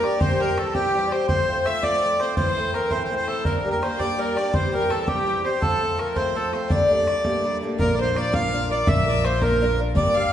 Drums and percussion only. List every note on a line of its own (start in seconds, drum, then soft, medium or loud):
0.04 bodhran soft
0.21 bodhran medium
0.41 bodhran soft
0.58 bodhran medium
0.75 bodhran medium
1.12 bodhran medium
1.29 bodhran medium
1.49 bodhran soft
1.66 bodhran medium
1.83 bodhran medium
2.20 bodhran soft
2.37 bodhran medium
2.57 bodhran soft
2.74 bodhran soft
2.91 bodhran medium
3.28 bodhran soft
3.45 bodhran medium
3.66 bodhran soft
3.83 bodhran medium
4.00 bodhran medium
4.37 bodhran soft
4.54 bodhran medium
4.74 bodhran soft
4.90 bodhran medium
5.08 bodhran medium
5.45 bodhran soft
5.62 bodhran medium
5.82 bodhran soft
5.99 bodhran medium
6.16 bodhran medium
6.53 bodhran soft
6.70 bodhran medium
6.90 bodhran soft
7.07 bodhran soft
7.25 bodhran medium
7.79 bodhran medium
8.16 bodhran medium
8.34 bodhran medium
8.53 bodhran soft
8.87 bodhran loud
9.25 bodhran medium
9.42 bodhran medium
9.61 bodhran soft
9.95 bodhran medium